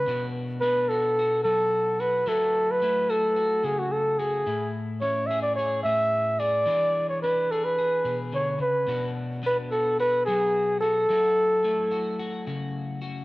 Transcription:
Already playing: muted trumpet B4
0.07 clean electric guitar B2 D4 F#4
0.61 clean electric guitar B3 D4, muted trumpet B4
0.89 clean electric guitar F#4, muted trumpet A4
1.19 clean electric guitar F#4
1.44 clean electric guitar F#3 F#4, muted trumpet A4
2.00 clean electric guitar F#4, muted trumpet B4
2.27 clean electric guitar F#3 E4 F#4, muted trumpet A4
2.71 muted trumpet B4
2.82 clean electric guitar A3 E4
3.10 clean electric guitar F#4, muted trumpet A4
3.36 clean electric guitar F#4
3.63 clean electric guitar C#3 F#4, muted trumpet G#4
3.79 muted trumpet F#4
3.92 muted trumpet A4
4.18 clean electric guitar F#4, muted trumpet G#4
4.46 clean electric guitar A2 E4
5.01 clean electric guitar C#4 E4, muted trumpet C#5
5.27 clean electric guitar G#4, muted trumpet E5
5.42 muted trumpet D5
5.56 clean electric guitar G#4, muted trumpet C#5
5.83 clean electric guitar A2 G#4, muted trumpet E5
6.39 clean electric guitar G#4, muted trumpet D5
6.66 clean electric guitar E3 D4 G#4
7.09 muted trumpet C#5
7.22 clean electric guitar D4, muted trumpet B4
7.51 clean electric guitar G#4, muted trumpet A4
7.65 muted trumpet B4
7.79 clean electric guitar G#4
8.04 clean electric guitar B2 G#4
8.32 clean electric guitar D3, muted trumpet C#5
8.59 clean electric guitar C#3, muted trumpet B4
8.87 clean electric guitar B2 D4 F#4
9.43 clean electric guitar B3 D4, muted trumpet B4
9.71 clean electric guitar F#4, muted trumpet A4
10.00 clean electric guitar F#4, muted trumpet B4
10.26 clean electric guitar F#3 F#4, muted trumpet G#4
10.81 clean electric guitar F#4, muted trumpet A4
11.10 clean electric guitar F#3 E4 F#4
11.64 clean electric guitar A3 E4
11.91 clean electric guitar F#4
12.19 clean electric guitar F#4
12.47 clean electric guitar C#3 F#4
13.02 clean electric guitar F#4

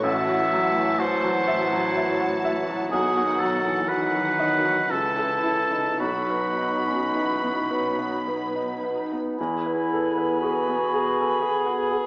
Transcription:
Already playing: cello section A2, viola section E3
0.03 grand piano A1, bassoon F#3, clarinet E4, viola section F#4, oboe E5, flute F#5, violin section A5
0.28 grand piano F#4
0.53 grand piano F#3
0.76 grand piano E3
0.99 bassoon F#3, clarinet E4, grand piano F#4, oboe C5, flute F#5
1.24 grand piano F#3
1.47 grand piano E5
1.72 grand piano F#3
1.96 grand piano E5
2.20 grand piano F#4
2.44 grand piano E5
2.69 grand piano F#3
2.91 grand piano B1, cello section B2, viola section D#3 F#4, bassoon F#3, clarinet D#4, oboe G#4, flute F#5, violin section F#5
3.17 grand piano F#4
3.39 grand piano F#3, oboe A4
3.67 grand piano E3
3.88 viola section D#3 F#4, cello section D#3, bassoon F#3, clarinet D#4, grand piano F#4, oboe B4, flute F#5, violin section F#5
4.15 grand piano F#3
4.39 grand piano D#5
4.65 grand piano F#3
4.90 grand piano C#2, cello section C#3, viola section E3 E4, bassoon E3, clarinet E4, oboe A4, violin section A5, flute A5
5.17 grand piano A4
5.43 grand piano E4
5.72 grand piano D#4
5.98 grand piano B1, cello section B2, viola section F#3 D#4, bassoon F#3, clarinet D#4, oboe F#4, flute B5, violin section B5
6.30 grand piano B4
6.58 grand piano D#4
6.88 grand piano C#4
7.14 bassoon E3, grand piano D#4
7.43 grand piano B3
7.71 bassoon F#3, grand piano B4
7.99 grand piano B3
8.28 bassoon B3, grand piano B4
8.55 grand piano D#4
8.83 clarinet D#4, grand piano B4
9.12 grand piano B3
9.37 grand piano E2, french horn section B3 G#4, bassoon B3, clarinet E4, oboe G#5, flute B5
9.66 grand piano B4
9.93 grand piano A4
10.18 grand piano B4
10.42 clarinet F#4, grand piano G#4
10.68 grand piano B3
10.94 grand piano G#4
11.21 grand piano A4
11.41 french horn section B3 G#4, grand piano G#4, clarinet G#4
11.66 grand piano F#4
11.91 grand piano G#4

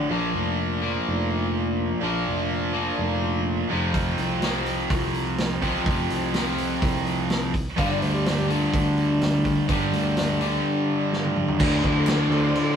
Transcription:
Already playing: distorted electric guitar D3
0.10 tine electric piano A#1, overdriven electric guitar A#2 F3 A#3
0.34 tine electric piano F1
0.82 overdriven electric guitar A#2 F3 A#3
1.06 tine electric piano F1
2.01 tine electric piano A#1, overdriven electric guitar A#2 F3 A#3
2.26 tine electric piano F1
2.73 overdriven electric guitar A#2 F3 A#3
2.98 tine electric piano F1
3.69 tine electric piano F1, overdriven electric guitar F2 C3 F3
3.94 kick, open hi-hat
4.18 tine electric piano C2, open hi-hat
4.41 overdriven electric guitar F2 C3 F3, snare, open hi-hat
4.66 open hi-hat
4.90 tine electric piano C2, kick, open hi-hat
5.14 open hi-hat
5.38 snare, open hi-hat
5.62 overdriven electric guitar F2 C3 F3, kick, open hi-hat
5.86 tine electric piano F1, kick, open hi-hat
6.10 tine electric piano C2, open hi-hat
6.33 overdriven electric guitar F2 C3 F3, snare, open hi-hat
6.58 open hi-hat
6.82 tine electric piano C2, kick, open hi-hat
7.07 open hi-hat
7.30 snare, open hi-hat
7.54 kick, open hi-hat
7.77 tine electric piano G1, overdriven electric guitar G2 D3 G3, electric slide guitar F5, kick, open hi-hat
7.91 electric slide guitar D5
8.02 tine electric piano D2, electric slide guitar C5, open hi-hat
8.14 electric slide guitar G4
8.26 electric slide guitar C5, snare, open hi-hat
8.39 electric slide guitar G4
8.48 overdriven electric guitar G2 D3 G3, electric slide guitar F4, open hi-hat
8.73 tine electric piano D2, electric slide guitar D4, kick, open hi-hat
8.97 open hi-hat
9.21 snare, open hi-hat
9.45 kick, open hi-hat
9.68 tine electric piano G1, overdriven electric guitar G2 D3 G3, kick, open hi-hat
9.92 tine electric piano D2, snare, open hi-hat
10.17 snare, open hi-hat
10.41 overdriven electric guitar G2 D3 G3, open hi-hat
11.13 snare
11.24 high tom
11.36 mid tom
11.48 floor tom
11.59 overdriven electric guitar D2 A2 D3, tine electric piano D2, string machine F4 A4 C5 D5, kick, crash
11.84 tine electric piano D2, kick, crash
12.07 snare, clap, crash
12.20 snare
12.31 tine electric piano D2, crash
12.55 crash

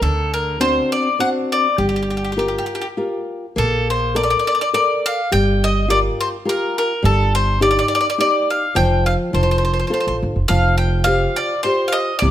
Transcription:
0.02 upright bass D2, nylon-string guitar D3, mandolin A4
0.34 mandolin A#4
0.60 nylon-string guitar C4 D4 F#4, mandolin C5
0.92 mandolin D5
1.19 nylon-string guitar C4 D4 F#4, mandolin F#5
1.52 mandolin D5
1.78 upright bass G1, nylon-string guitar G3, mandolin G4
1.89 mandolin G4
1.96 mandolin G4
2.03 mandolin G4
2.10 mandolin G4
2.17 mandolin G4
2.25 mandolin G4
2.32 mandolin G4
2.37 nylon-string guitar F4 G4 A#4, mandolin G4
2.48 mandolin G4
2.58 mandolin G4
2.66 mandolin G4
2.75 mandolin G4
2.82 mandolin G4
2.97 nylon-string guitar F4 G4 A#4
3.56 upright bass A#1, nylon-string guitar A#3, mandolin A4
3.90 mandolin C5
4.15 nylon-string guitar A4 A#4 D5, mandolin D5
4.23 mandolin D5
4.30 mandolin D5
4.39 mandolin D5
4.47 mandolin D5
4.55 mandolin D5
4.61 mandolin D5
4.73 nylon-string guitar A4 A#4 D5, mandolin D5
5.06 mandolin F5
5.32 upright bass G1, nylon-string guitar G3, mandolin G5
5.64 mandolin D#5
5.88 nylon-string guitar F4 G4 A#4, mandolin D5
6.21 mandolin C5
6.45 nylon-string guitar F4 G4 A#4, mandolin A#4
6.78 mandolin A#4
7.03 upright bass G1, nylon-string guitar G3, mandolin A4
7.35 mandolin C5
7.60 nylon-string guitar D#4 G4 D5, mandolin D5
7.71 mandolin D5
7.79 mandolin D5
7.88 mandolin D5
7.95 mandolin D5
8.01 mandolin D5
8.10 mandolin D5
8.18 nylon-string guitar D#4 G4 D5, mandolin D5
8.50 mandolin F5
8.75 upright bass F1, nylon-string guitar F3, mandolin G5
9.06 mandolin F5
9.33 upright bass F1, nylon-string guitar F3, mandolin C5
9.43 mandolin C5
9.51 mandolin C5
9.58 mandolin C5
9.65 mandolin C5
9.74 mandolin C5
9.79 mandolin C5
9.87 nylon-string guitar F4 A4 C5, mandolin C5
9.94 mandolin C5
10.00 mandolin C5
10.07 upright bass A1, mandolin C5
10.22 upright bass G1
10.36 upright bass F1
10.48 upright bass F1, nylon-string guitar F3, mandolin F5
10.78 mandolin G5
11.04 nylon-string guitar F4 G4 C5, mandolin F5
11.36 mandolin D5
11.63 nylon-string guitar F4 G4 C5, mandolin C5
11.88 mandolin F5
11.93 mandolin D#5
12.19 upright bass C2, nylon-string guitar C3, mandolin D5

